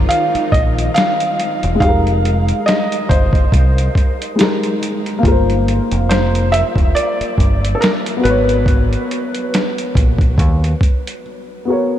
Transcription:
Already playing: string machine D#3 G#3 D#4 F4, upright piano F3 C4 D#4 A#4, felt piano D5
0.09 felt piano F5, closed hi-hat
0.35 muted fingered electric bass stroke, closed hi-hat
0.52 fingered electric bass A#1, felt piano D#5, kick, closed hi-hat
0.78 closed hi-hat
0.94 felt piano F5, snare, closed hi-hat
1.20 closed hi-hat
1.40 closed hi-hat
1.63 fingered electric bass E1, closed hi-hat
1.75 upright piano G#3
1.79 fingered electric bass F1, upright piano D#4, felt piano F5, kick, closed hi-hat
1.84 upright piano G4
1.88 upright piano A#4
2.07 closed hi-hat
2.25 closed hi-hat
2.48 closed hi-hat
2.66 felt piano D#5, snare, closed hi-hat
2.92 closed hi-hat
3.09 fingered electric bass G1, felt piano C5, kick, closed hi-hat
3.33 kick, closed hi-hat
3.52 fingered electric bass C2, kick, closed hi-hat
3.78 closed hi-hat
3.95 kick, closed hi-hat
4.22 closed hi-hat
4.35 upright piano G#3 D#4, closed hi-hat
4.40 upright piano G4 A#4, snare
4.63 closed hi-hat
4.83 closed hi-hat
5.06 closed hi-hat
5.19 upright piano A#3
5.23 fingered electric bass G1, upright piano F4, kick, closed hi-hat
5.27 upright piano A#4
5.32 upright piano C5
5.50 closed hi-hat
5.68 closed hi-hat
5.91 fingered electric bass F1, closed hi-hat
6.09 felt piano C5, snare, closed hi-hat
6.35 closed hi-hat
6.52 felt piano E5, closed hi-hat
6.76 fingered electric bass E1, kick, closed hi-hat
6.95 felt piano D5, closed hi-hat
7.21 muted fingered electric bass stroke, closed hi-hat
7.38 fingered electric bass G1, kick, closed hi-hat
7.65 closed hi-hat
7.75 felt piano A4
7.81 felt piano A#4, snare, closed hi-hat
8.06 closed hi-hat
8.17 upright piano B3
8.21 fingered electric bass G#1, upright piano F#4, felt piano B4
8.25 upright piano B4, closed hi-hat
8.29 upright piano C#5
8.49 closed hi-hat
8.66 kick, closed hi-hat
8.93 closed hi-hat
9.11 closed hi-hat
9.35 closed hi-hat
9.54 snare, closed hi-hat
9.78 closed hi-hat
9.95 fingered electric bass A#1, kick, closed hi-hat
10.18 kick, closed hi-hat
10.38 fingered electric bass D#2, kick, closed hi-hat
10.64 closed hi-hat
10.81 kick, closed hi-hat
11.07 closed hi-hat
11.65 upright piano B3 F#4
11.70 upright piano A#4 C#5

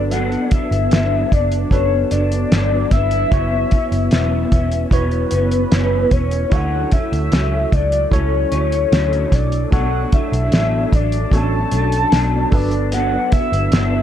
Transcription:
Already playing: picked electric bass G1, clean electric guitar F#3 B3 D4, tine electric piano D4 F#4 A4 B4, soft synth lead D5
0.11 clean electric guitar G2 F#3 B3 D4, soft synth lead F#5, closed hi-hat
0.32 closed hi-hat
0.51 clean electric guitar F#3 B3 D4, soft synth lead E5, kick, closed hi-hat
0.71 picked electric bass G1, closed hi-hat
0.91 picked electric bass G1, clean electric guitar G2 F#3 B3 D4, snare, closed hi-hat
1.31 picked electric bass F#1, clean electric guitar F#3 B3 D4, soft synth lead D5, kick, closed hi-hat
1.52 closed hi-hat
1.70 picked electric bass F#1, clean electric guitar F#3 B3 D4, tine electric piano D4 F#4 A4 B4, soft synth lead C#5, kick, closed hi-hat
2.11 picked electric bass F#1, clean electric guitar F#3 B3 D4, soft synth lead D5, closed hi-hat
2.32 closed hi-hat
2.52 picked electric bass G1, clean electric guitar G2 F#3 B3 D4, snare, closed hi-hat
2.91 picked electric bass G1, clean electric guitar F#3 B3 D4, soft synth lead E5, kick, snare, closed hi-hat
3.11 closed hi-hat
3.31 picked electric bass F#1, clean electric guitar F#2 E3 B3 C#4, tine electric piano E4 F#4 B4 C#5, kick, closed hi-hat
3.71 clean electric guitar E3 B3 C#4, kick, closed hi-hat
3.92 picked electric bass F#1, closed hi-hat
4.11 picked electric bass E1, clean electric guitar F#2 E3 B3 C#4, soft synth lead E5, snare, closed hi-hat
4.52 picked electric bass E1, clean electric guitar E3 B3 C#4, kick, closed hi-hat
4.72 closed hi-hat
4.91 picked electric bass E1, clean electric guitar F#2 E3 B3 C#4, tine electric piano E4 F#4 B4 C#5, soft synth lead B4, kick, closed hi-hat
5.11 closed hi-hat
5.31 picked electric bass F#1, clean electric guitar E3 B3 C#4, closed hi-hat
5.51 closed hi-hat
5.71 picked electric bass F#1, clean electric guitar F#2 E3 B3 C#4, snare, closed hi-hat
6.11 picked electric bass E1, clean electric guitar E3 B3 C#4, soft synth lead C#5, kick, closed hi-hat
6.31 closed hi-hat
6.50 picked electric bass D2, clean electric guitar D3 F#3 A3 C#4, tine electric piano E4 F#4 A4 C#5, soft synth lead F#5, kick, closed hi-hat
6.91 clean electric guitar F#3 A3 C#4, soft synth lead E5, kick, closed hi-hat
7.12 picked electric bass D2, closed hi-hat
7.32 picked electric bass C#2, clean electric guitar F#3 A3 C#4, snare, closed hi-hat
7.72 picked electric bass C#2, clean electric guitar F#3 A3, soft synth lead D5, kick, closed hi-hat
7.92 closed hi-hat
8.11 picked electric bass C#2, clean electric guitar F#3 A3 C#4, tine electric piano E4 F#4 A4 C#5, soft synth lead C#5, kick, closed hi-hat
8.51 picked electric bass D2, clean electric guitar F#3 A3 C#4, closed hi-hat
8.72 closed hi-hat
8.91 picked electric bass D2, clean electric guitar D3 F#3 A3 C#4, snare, closed hi-hat
9.13 closed hi-hat
9.32 picked electric bass B1, clean electric guitar F#3 A3, soft synth lead D5, kick, snare, closed hi-hat
9.52 closed hi-hat
9.71 picked electric bass B1, clean electric guitar B2 F#3 A3 D4, tine electric piano D4 F#4 A4 C#5, soft synth lead F#5, kick, closed hi-hat
10.12 clean electric guitar F#3 A3 D4, soft synth lead E5, kick, closed hi-hat
10.32 picked electric bass B1, closed hi-hat
10.51 picked electric bass A1, clean electric guitar B2 F#3 A3 D4, snare, closed hi-hat
10.92 picked electric bass A1, clean electric guitar F#3 A3 D4, soft synth lead D5, kick, closed hi-hat
11.12 closed hi-hat
11.31 picked electric bass A1, clean electric guitar B2 F#3 A3, tine electric piano C#4 F#4 A4 C#5, soft synth lead A5, kick, closed hi-hat
11.35 clean electric guitar D4, tine electric piano D4
11.71 picked electric bass B1, clean electric guitar F#3 A3 D4, closed hi-hat
11.92 closed hi-hat
12.12 picked electric bass B1, clean electric guitar B2 F#3 A3 D4, snare, closed hi-hat
12.51 picked electric bass G1, clean electric guitar F#3 B3 D4, tine electric piano D4 F#4 A4 B4, soft synth lead D5, kick, open hi-hat
12.71 closed hi-hat
12.92 clean electric guitar G2 F#3 B3 D4, soft synth lead F#5, closed hi-hat
13.31 clean electric guitar F#3 B3 D4, soft synth lead E5, kick, closed hi-hat
13.52 picked electric bass G1, closed hi-hat
13.71 picked electric bass G1, clean electric guitar G2 F#3 B3 D4, snare, closed hi-hat

